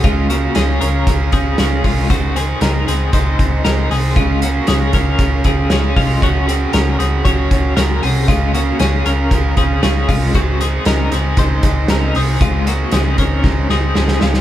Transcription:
<<
  \new Staff \with { instrumentName = "Clean electric guitar" } { \time 4/4 \key des \major \tempo 4 = 116 <aes f'>8 <bes ges'>8 <des' aes'>8 <des' bes'>4 <c' aes'>8 <des' aes'>8 <aes f'>8 | <c' ges'>8 <c' aes'>8 <ees' bes'>8 <c' aes'>8 <ees' c''>4 <ees' bes'>8 <c' aes'>8 | <aes f'>8 <bes ges'>8 <des' aes'>8 <des' bes'>4 <c' aes'>8 <des' aes'>8 <aes f'>8 | <des' ges'>8 <c' aes'>8 <des' bes'>8 <c' aes'>8 <ges' des''>4 <des' bes'>8 <c' aes'>8 |
<aes f'>8 <bes ges'>8 <des' aes'>8 <des' bes'>4 <c' aes'>8 <des' aes'>8 <aes f'>8 | <c' ges'>8 <c' aes'>8 <ees' bes'>8 <c' aes'>8 <ees' c''>4 <ees' bes'>8 <c' aes'>8 | <aes f'>8 <bes ges'>8 <c' aes'>8 <des' bes'>4 <c' aes'>8 <c' aes'>8 <aes f'>8 | }
  \new Staff \with { instrumentName = "Overdriven electric guitar" } { \time 4/4 \key des \major <des aes des' f' aes'>8 <des' f' aes'>8 <des aes des' f' aes'>8 <des' f' aes'>8 <aes des' f' aes'>8 <des' f' aes'>8 <des aes des' f' aes'>8 <des' f' aes'>8 | <des aes c' ees' aes'>8 <c' ees' aes'>8 <des aes c' ees' aes'>8 <c' ees' aes'>8 <aes c' ees' aes'>8 <c' ees' aes'>8 <des aes c' ees' aes'>8 <c' ees' aes'>8 | <des aes des' f' aes'>8 <des' f' aes'>8 <des aes des' f' aes'>8 <des' f' aes'>8 <aes des' f' aes'>8 <des' f' aes'>8 <des aes des' f' aes'>8 <des' f' aes'>8 | <des ges des' ges' aes'>8 <des' ges' aes'>8 <des ges des' ges' aes'>8 <des' ges' aes'>8 <ges des' ges' aes'>8 <des' ges' aes'>8 <des ges des' ges' aes'>8 <des' ges' aes'>8 |
<des aes des' f' aes'>8 <des' f' aes'>8 <des aes des' f' aes'>8 <des' f' aes'>8 <aes des' f' aes'>8 <des' f' aes'>8 <des aes des' f' aes'>8 <des' f' aes'>8 | <des aes c' ees' aes'>8 <c' ees' aes'>8 <des aes c' ees' aes'>8 <c' ees' aes'>8 <aes c' ees' aes'>8 <c' ees' aes'>8 <des aes c' ees' aes'>8 <c' ees' aes'>8 | <des aes c' ees' aes'>8 <c' ees' aes'>8 <des aes c' ees' aes'>8 <c' ees' aes'>8 <aes c' ees' aes'>8 <c' ees' aes'>8 <des aes c' ees' aes'>8 <c' ees' aes'>8 | }
  \new Staff \with { instrumentName = "Picked electric bass" } { \clef bass \time 4/4 \key des \major des,4 des,8 des,8 des,8 des,8 des,8 c,8 | des,4 des,8 des,8 des,8 des,8 des,8 c,8 | des,4 des,8 des,8 des,8 des,8 des,8 c,8 | des,4 des,8 des,8 des,8 des,8 des,8 c,8 |
des,4 des,8 des,8 des,8 des,8 des,8 c,8 | des,4 des,8 des,8 des,8 des,8 des,8 c,8 | des,4 des,8 des,8 des,8 des,8 des,8 des,8 | }
  \new DrumStaff \with { instrumentName = "Drums" } \drummode { \time 4/4 <hh bd>8 hh8 <hh sn>8 hh8 <hh bd>8 <hh bd>8 <hh sn>8 <hho bd>8 | <hh bd>8 hh8 <hh sn>8 hh8 <hh bd>8 <hh bd>8 <hh sn>8 hho8 | <hh bd>8 hh8 <hh sn>8 <hh bd sn>8 <hh bd>8 <hh bd>8 <hh sn>8 <hho bd>8 | <hh bd>8 hh8 <hh sn>8 hh8 <hh bd>8 <hh bd>8 <hh sn>8 hho8 |
<hh bd>8 hh8 <hh sn>8 hh8 <hh bd>8 <hh bd>8 <hh sn>8 <hho bd>8 | <hh bd>8 hh8 <hh sn>8 <hh sn>8 <hh bd>8 <hh bd>8 <hh sn>8 hho8 | <hh bd>8 hh8 <hh sn>8 <hh bd>8 <bd sn>8 sn8 sn16 sn16 sn16 sn16 | }
>>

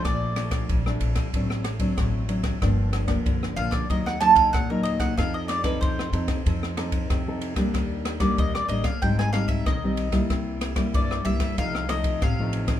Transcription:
<<
  \new Staff \with { instrumentName = "Mandolin" } { \time 4/4 \key f \mixolydian \tempo 4 = 94 d''2 r2 | r4. f''16 d''16 ees''16 ges''16 a''16 f''16 ges''16 bes'16 ees''16 ges''16 | f''16 ees''16 d''16 ces''16 c''2 r4 | r8. d''16 ees''16 d''16 ees''16 f''16 g''16 aes''16 f''16 e''16 ees''4 |
r4 d''8 e''8 f''8 ees''8 f''4 | }
  \new Staff \with { instrumentName = "Nylon-string guitar" } { \time 4/4 \key f \mixolydian << { <f a d'>8 <f a d'>8. <f a d'>8. <fis c' d'>8 r16 <fis c' d'>8. <fis c' d'>8 | <f bes d'>8. <f bes d'>8. <f bes d'>8 <ges bes ees'>8 <ges bes ees'>8 r16 <ges bes ees'>8. | <c' ees' a'>8. <c' ees' a'>8. <c' ees' a'>8 <c' ees' a'>8 <c' ees' a'>8. <c' ees' a'>8 <g bes d'>16~ | <g bes d'>8. <g bes d'>8. <g bes d'>16 r16 <g c' ees'>8 <g c' ees'>8. <g c' ees'>8 <g bes e'>16~ |
<g bes e'>8. <g bes e'>8. <g bes e'>8 <f a ees'>8 <f a ees'>8 r16 <f a ees'>8. | } \\ { bes,4 f,4 a,4 a,4 | g,4 d4 ees4 bes,4 | f4 c4 f4 c4 | ees4 bes,4 aes,4 ees4 |
c4 g,4 c4 c4 | } >> }
  \new Staff \with { instrumentName = "Upright bass" } { \clef bass \time 4/4 \key f \mixolydian bes,,4 bes,,8 bes,,16 r16 a,,4 a,,4 | g,,4 g,,8 bes,,16 r16 ees,4 ees,4 | f,4 f,8 f,16 r16 f,4 f,4 | ees,4 ees,8 a,,16 r16 aes,,4 ces,4 |
c,4 c,8 c,16 r16 c,4 a,,4 | }
  \new DrumStaff \with { instrumentName = "Drums" } \drummode { \time 4/4 <bd cymr ss>8 <cymr ss>16 <bd cymr ss>16 <bd cymr>16 ss16 cymr16 <bd cymr ss>16 <bd cymr>16 ss16 <cymr ss>16 <bd cymr>16 <bd cymr ss>8 cymr16 <bd cymr ss>16 | <bd cymr ss>8 <cymr ss>16 <bd cymr ss>16 <bd cymr>16 ss16 cymr16 <bd cymr ss>16 <bd cymr>16 ss16 <cymr ss>16 <bd cymr>16 <bd cymr ss>8 cymr16 <bd cymr ss>16 | <bd cymr ss>8 <cymr ss>16 <bd cymr ss>16 <bd cymr>16 ss16 cymr16 <bd cymr ss>16 <bd cymr>16 ss16 <cymr ss>16 <bd cymr>16 <bd cymr ss>8 cymr16 <bd cymr ss>16 | <bd cymr ss>8 <cymr ss>16 <bd cymr ss>16 <bd cymr>16 ss16 cymr16 <bd cymr ss>16 <bd cymr>16 ss16 <cymr ss>16 <bd cymr>16 <bd cymr ss>8 cymr16 <bd cymr ss>16 |
<bd cymr ss>8 <cymr ss>16 <bd cymr ss>16 <bd cymr>16 ss16 cymr16 <bd cymr ss>16 <bd cymr>16 ss16 <cymr ss>16 <bd cymr>16 <bd cymr ss>8 cymr16 <bd cymr ss>16 | }
>>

